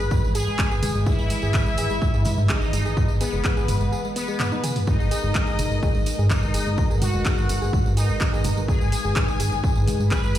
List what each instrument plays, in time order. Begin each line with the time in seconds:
Already playing: analog synth pad E3 G#4 B4, analog polysynth B4, violin section B5
0.11 synth arpeggio sound G#3, kick, mid tom, tambourine
0.23 analog synth bass G#2, synth arpeggio sound G#3, tambourine
0.35 analog polysynth G#4, synth arpeggio sound G#4, violin section G#5, open hi-hat, tambourine
0.47 analog synth bass G#1, synth arpeggio sound G#3, tambourine
0.59 synth arpeggio sound G#3, kick, clap, tambourine
0.71 analog synth bass G#1, synth arpeggio sound G#4, tambourine
0.82 analog synth bass G#1, synth arpeggio sound G#3, mid tom, open hi-hat, tambourine
0.95 analog synth bass G#1, synth arpeggio sound G#3, tambourine
1.06 analog polysynth E4, synth arpeggio sound G#4, violin section E5, kick, tambourine
1.19 analog synth bass G#1, synth arpeggio sound G#3, tambourine
1.30 synth arpeggio sound G#3, open hi-hat, tambourine
1.42 analog synth bass G#1, synth arpeggio sound G#4, tambourine
1.54 synth arpeggio sound G#3, kick, clap, mid tom, tambourine
1.66 analog synth bass G#1, synth arpeggio sound G#3, tambourine
1.77 analog synth bass G#1, synth arpeggio sound G#4, open hi-hat, tambourine
1.90 analog synth bass G#1, synth arpeggio sound G#3, tambourine
2.02 synth arpeggio sound G#3, kick, tambourine
2.14 analog synth bass G#2, synth arpeggio sound G#4, tambourine
2.25 synth arpeggio sound G#3, mid tom, open hi-hat, tambourine
2.38 analog synth bass G#2, synth arpeggio sound G#3, tambourine
2.49 analog polysynth D#4, synth arpeggio sound G#4, violin section D#5, kick, clap, tambourine
2.62 analog synth bass G#1, synth arpeggio sound G#3, tambourine
2.73 analog synth bass G#1, synth arpeggio sound G#3, open hi-hat, tambourine
2.85 analog synth bass G#1, synth arpeggio sound G#4, tambourine
2.97 synth arpeggio sound G#3, kick, mid tom, tambourine
3.08 analog synth bass G#1, synth arpeggio sound G#3, tambourine
3.21 analog polysynth B3, synth arpeggio sound G#4, violin section B4, open hi-hat, tambourine
3.33 analog synth bass F#1, synth arpeggio sound G#3, tambourine
3.45 synth arpeggio sound G#3, kick, clap, tambourine
3.57 analog synth bass G#1, synth arpeggio sound G#4, tambourine
3.68 analog synth bass G#1, synth arpeggio sound G#3, mid tom, open hi-hat, tambourine
3.81 analog synth bass G#1, synth arpeggio sound G#3, tambourine
3.92 synth arpeggio sound G#4, tambourine
4.04 synth arpeggio sound G#3, tambourine
4.16 synth arpeggio sound B3, analog polysynth B3, violin section B4, open hi-hat, tambourine
4.28 synth arpeggio sound G#3, tambourine
4.40 synth arpeggio sound B3, clap, mid tom, tambourine
4.52 synth arpeggio sound D#4, high tom, tambourine
4.64 synth arpeggio sound G#4, open hi-hat, mid tom, tambourine
4.76 synth arpeggio sound G#3, mid tom, open hi-hat, tambourine
4.87 synth arpeggio sound G#3, analog synth pad G#3 D#4 A#4 B4, analog polysynth D#4, violin section D#5, kick, mid tom, tambourine
5.00 analog synth bass G#1, synth arpeggio sound G#3, tambourine
5.11 synth arpeggio sound G#4, open hi-hat, tambourine
5.23 analog synth bass G#1, synth arpeggio sound G#3, tambourine
5.34 synth arpeggio sound G#3, kick, clap, tambourine
5.47 analog synth bass G#1, synth arpeggio sound G#4, tambourine
5.59 analog synth bass G#1, synth arpeggio sound G#3, mid tom, open hi-hat, tambourine
5.71 analog synth bass G#1, synth arpeggio sound G#3, tambourine
5.83 synth arpeggio sound G#4, kick, tambourine
5.95 analog synth bass G#2, synth arpeggio sound G#3, tambourine
6.06 synth arpeggio sound G#3, open hi-hat, tambourine
6.19 analog synth bass G#2, synth arpeggio sound G#4, tambourine
6.30 synth arpeggio sound G#3, analog polysynth D#4, violin section D#5, kick, clap, mid tom, tambourine
6.42 analog synth bass G#1, synth arpeggio sound G#3, tambourine
6.54 analog synth bass G#1, synth arpeggio sound G#4, open hi-hat, tambourine
6.66 analog synth bass G#1, synth arpeggio sound G#3
6.77 synth arpeggio sound G#3, kick, tambourine
6.90 analog synth bass G#1, synth arpeggio sound G#4, tambourine
7.01 synth arpeggio sound G#3, analog polysynth F#4, violin section F#5, mid tom, open hi-hat, tambourine
7.13 analog synth bass F#1, synth arpeggio sound G#3, tambourine
7.25 synth arpeggio sound G#4, kick, clap, tambourine
7.38 analog synth bass G#1, synth arpeggio sound G#3, tambourine
7.49 analog synth bass G#1, synth arpeggio sound G#3, open hi-hat, tambourine
7.62 analog synth bass G#1, synth arpeggio sound G#4, tambourine
7.73 synth arpeggio sound G#3, kick, mid tom, tambourine
7.85 analog synth bass G#2, synth arpeggio sound G#3, tambourine
7.97 analog polysynth D#4, synth arpeggio sound G#4, violin section D#5, open hi-hat, tambourine
8.09 analog synth bass G#1, synth arpeggio sound G#3, tambourine
8.20 synth arpeggio sound G#3, kick, clap, tambourine
8.33 analog synth bass G#1, synth arpeggio sound G#4, tambourine
8.44 analog synth bass G#1, synth arpeggio sound G#3, mid tom, open hi-hat, tambourine
8.57 analog synth bass G#1, synth arpeggio sound G#3, tambourine
8.68 analog polysynth G#4, synth arpeggio sound G#4, analog synth pad G#4, violin section G#5, kick, tambourine
8.81 analog synth bass G#1, synth arpeggio sound G#3, tambourine
8.92 synth arpeggio sound G#3, open hi-hat, tambourine
9.05 analog synth bass G#1, synth arpeggio sound G#4, tambourine
9.16 synth arpeggio sound G#3, kick, clap, mid tom, tambourine
9.28 analog synth bass G#1, synth arpeggio sound G#3, tambourine
9.40 analog synth bass G#1, synth arpeggio sound G#4, open hi-hat, tambourine
9.52 analog synth bass G#1, synth arpeggio sound G#3, tambourine
9.64 synth arpeggio sound G#3, kick, tambourine
9.75 analog synth bass G#2, synth arpeggio sound G#4, tambourine
9.88 synth arpeggio sound G#3, mid tom, open hi-hat, tambourine
10.00 analog synth bass G#2, synth arpeggio sound G#3, tambourine
10.11 synth arpeggio sound G#4, analog polysynth B4, violin section B5, kick, clap, tambourine
10.24 analog synth bass G#1, synth arpeggio sound G#3, tambourine
10.35 analog synth bass G#1, synth arpeggio sound G#3, open hi-hat, tambourine